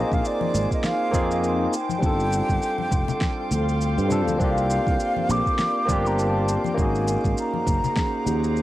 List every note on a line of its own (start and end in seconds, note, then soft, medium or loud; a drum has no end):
0.00 1.11 A#3 medium
0.00 1.12 C4 medium
0.00 1.13 D#4 medium
0.00 1.70 D#4 medium
0.00 1.14 F4 medium
0.00 1.15 G#4 loud
0.00 1.70 A#4 medium
0.00 8.62 C5 medium
0.00 0.15 D#5 loud
0.00 1.70 G#5 medium
0.00 6.73 C6 medium
0.00 8.62 D6 medium
0.12 0.20 A#1 medium
0.12 0.28 F5 loud
0.12 kick loud
0.12 shaker soft
0.25 0.72 D5 loud
0.25 shaker soft
0.41 high conga medium
0.54 0.65 G#1 loud
0.54 shaker medium
0.71 0.87 D#5 medium
0.71 kick medium
0.71 shaker soft
0.84 1.44 F5 loud
0.84 snare medium
0.84 shaker soft
1.11 1.66 F2 medium
1.11 1.70 A#3 loud
1.11 1.71 C4 medium
1.11 1.71 D#4 medium
1.11 1.71 F4 medium
1.11 1.72 G#4 loud
1.11 kick loud
1.11 high conga medium
1.11 shaker medium
1.31 shaker soft
1.44 shaker soft
1.73 4.37 A4 medium
1.73 6.74 F5 medium
1.73 4.37 G5 medium
1.73 4.07 G5 loud
1.73 shaker medium
1.89 high conga loud
1.89 shaker soft
1.99 2.40 G1 loud
1.99 4.05 G3 medium
1.99 4.06 C4 medium
1.99 4.07 D4 medium
1.99 kick loud
2.03 4.08 F4 medium
2.03 4.09 A4 medium
2.03 shaker soft
2.20 shaker soft
2.33 shaker medium
2.49 2.58 G1 medium
2.49 kick medium
2.49 shaker soft
2.62 shaker soft
2.78 high conga medium
2.91 3.03 F1 medium
2.91 kick loud
2.91 shaker medium
3.08 low conga medium
3.08 shaker soft
3.21 kick loud
3.21 snare medium
3.21 shaker soft
3.51 3.97 D2 medium
3.51 high conga medium
3.51 shaker medium
3.69 shaker soft
3.81 shaker soft
3.97 4.27 G2 medium
3.97 shaker soft
4.08 4.36 G3 medium
4.08 4.36 C4 medium
4.08 4.37 D4 medium
4.08 4.37 F4 medium
4.08 4.38 A4 medium
4.08 low conga medium
4.08 shaker medium
4.27 4.36 D2 medium
4.27 high conga loud
4.27 shaker soft
4.36 4.78 C2 medium
4.36 5.84 A#3 medium
4.36 5.85 C4 medium
4.36 5.86 D4 medium
4.36 6.75 A#4 medium
4.36 6.75 D5 medium
4.36 kick loud
4.41 5.87 F4 medium
4.41 5.87 G4 medium
4.41 5.32 F5 loud
4.41 shaker soft
4.58 shaker soft
4.70 shaker medium
4.87 4.95 C2 medium
4.87 kick loud
4.87 shaker soft
5.00 shaker soft
5.16 high conga medium
5.29 5.40 A#1 medium
5.29 6.09 D6 loud
5.29 shaker medium
5.46 kick medium
5.46 shaker soft
5.59 snare medium
5.59 shaker soft
5.85 6.56 G1 medium
5.85 6.73 A#3 medium
5.85 6.74 C4 medium
5.85 6.75 D4 medium
5.85 kick loud
5.85 shaker medium
5.89 6.76 F4 medium
5.89 6.77 G4 loud
5.89 high conga medium
6.06 6.21 A#5 loud
6.06 shaker soft
6.19 6.66 A5 medium
6.19 shaker soft
6.49 shaker medium
6.64 6.81 G5 medium
6.64 high conga medium
6.64 shaker soft
6.74 7.15 G#1 loud
6.74 8.62 A#3 medium
6.74 8.62 C#4 medium
6.74 8.62 D#4 medium
6.74 8.62 G#4 medium
6.74 8.62 F#5 medium
6.74 kick loud
6.78 8.62 F#4 medium
6.78 8.62 G#4 medium
6.78 7.38 G#5 loud
6.78 8.62 A#5 loud
6.78 shaker soft
6.95 shaker soft
7.08 shaker medium
7.24 7.33 G#1 medium
7.24 kick medium
7.24 shaker soft
7.38 8.62 A#5 loud
7.38 shaker soft
7.54 high conga medium
7.67 7.78 F#1 loud
7.67 kick loud
7.67 shaker medium
7.84 low conga medium
7.84 shaker soft
7.96 kick loud
7.96 snare medium
7.96 shaker soft
8.26 8.62 D#2 medium
8.26 high conga medium
8.26 shaker medium
8.44 shaker soft
8.57 shaker soft